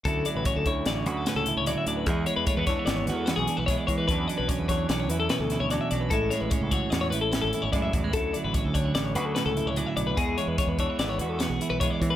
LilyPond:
<<
  \new Staff \with { instrumentName = "Clean electric guitar" } { \time 5/4 \key d \lydian \tempo 4 = 148 a'8 d''16 b'16 cis''16 a'16 cis''8 d''16 cis''16 b'16 a'16 b'16 a'8 cis''16 d''16 e''16 d''16 b'16 | gis'8 cis''16 b'16 cis''16 b'16 cis''8 d''16 cis''16 b'16 a'16 b'16 gis'8 b'16 cis''16 d''16 cis''16 b'16 | b'8 d''16 b'16 cis''16 b'16 cis''8 d''16 cis''16 b'16 a'16 b'16 a'8 cis''16 d''16 e''16 d''16 b'16 | a'8 cis''16 b'16 cis''16 a'16 cis''8 d''16 cis''16 b'16 a'16 b'16 a'8 cis''16 d''16 e''16 d''16 b'16 |
a'8 d''16 b'16 cis''16 a'16 cis''8 d''16 cis''16 b'16 a'16 b'16 a'8 cis''16 d''16 e''16 d''16 b'16 | gis'8 cis''16 b'16 cis''16 b'16 cis''8 d''16 cis''16 b'16 a'16 b'16 gis'8 b'16 cis''16 d''16 cis''16 b'16 | }
  \new Staff \with { instrumentName = "Clean electric guitar" } { \time 5/4 \key d \lydian << { <fis cis' e'>8 fis8 cis'8 e'8 cis'8 fis'8 cis'8 e'8 <fis cis' e'>8 fis8 | <gis b e'>8 gis8 a16 b16 d'16 e'16 b8 fis'8 b8 d'16 e'16 <gis b e'>8 gis8 | <fis cis' d'>8 fis8 cis'8 d'8 cis'8 e'8 cis'8 e'8 <fis cis' d'>8 fis8 | <gis cis' e'>8 gis8 cis'8 fis'8 cis'8 e'8 cis'8 e'8 <gis cis' e'>8 fis16 gis16 |
<fis cis' e'>8 fis8 cis'8 d'16 e'16 cis'8 fis'8 cis'8 e'8 <fis cis' e'>8 fis8 | <gis b e'>8 gis8 b8 d'16 e'16 b8 fis'8 b8 e'8 <gis b e'>8 gis8 | } \\ { d,4. d4. a,4 d,4 | e,4. e4. e,4 e,4 | e,4. e4. b,4 e,4 | a,4. e4. e,4 a,4 |
d,4. d4. a,4 d,4 | e,4. e4. e,4 e,4 | } >> }
  \new Staff \with { instrumentName = "Fingered electric bass" } { \clef bass \time 5/4 \key d \lydian d,8 r16 a,,8 d,8. a,,8 d,8 r16 cis,8 cis,8 r16 d,8 | e,8 r16 e,16 r16 e,8 r16 gis,,8 e,8. b,,16 r16 b,,8 r16 e8 | e,8 r16 b,,8 e,8. b,,8 e,8 r16 d,8 d,8 r16 b,,8 | a,,8 r16 a,,16 r16 cis,8 r16 e,8 a,,8. gis,,16 r16 gis,,16 fis,8 e,8 |
d,8 r16 a,,8 d,8. a,,8 d,8 r16 cis,8 cis,8 r16 b,,8 | e,8 r16 e,16 r16 e,8 r16 gis,,8 e,8. b,,16 r16 b,,8 r16 e8 | }
  \new DrumStaff \with { instrumentName = "Drums" } \drummode { \time 5/4 <hh bd>8 hh8 <hh bd>8 <hh bd>8 <hh sn>8 hh8 <hh sn>8 hh8 hh8 hh8 | <hh bd>8 hh8 <hh bd>8 <hh bd sn>8 <hh sn>8 <hh sn>8 <hh sn>8 hh8 <hh bd>8 <hh bd>8 | <hh bd>8 hh8 <hh bd>8 <hh bd sn>8 <hh sn>8 hh8 <hh sn>8 <hh sn>8 <hh sn>8 <hh sn>8 | <hh bd>8 <hh sn>8 <hh bd>8 <hh bd>8 <hh sn>8 hh8 <hh sn>8 hh8 <hh bd sn>8 <hh bd>8 |
<hh bd>8 hh8 <hh bd>8 <hh bd>8 <hh sn>8 hh8 <hh sn>8 hh8 hh8 hh8 | <hh bd>8 hh8 <hh bd sn>8 <hh bd>8 <hh sn>8 hh8 <hh sn>8 hh8 <hh bd>8 <hh bd>8 | }
>>